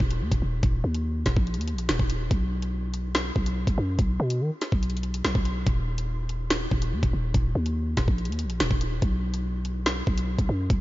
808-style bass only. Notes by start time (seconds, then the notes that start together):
0.00 D#1
0.21 D#2
0.32 D#1
0.42 D#1
0.63 D#1
0.84 D#2
1.26 D#1
1.37 A#1
1.58 D#2
1.73 A#1
1.89 D#1
1.99 D#1
2.31 B1
3.36 B1
3.67 B1
3.78 F#2
3.99 B1
4.20 B2
4.41 D#3
4.72 B1
5.25 B1
5.35 B1
5.67 D#1
6.71 D#1
6.92 D#2
7.03 D#1
7.13 D#1
7.34 D#1
7.55 D#2
7.97 D#1
8.08 A#1
8.29 D#2
8.44 A#1
8.60 D#1
8.71 D#1
9.02 B1
10.07 B1
10.39 B1
10.49 F#2
10.70 B1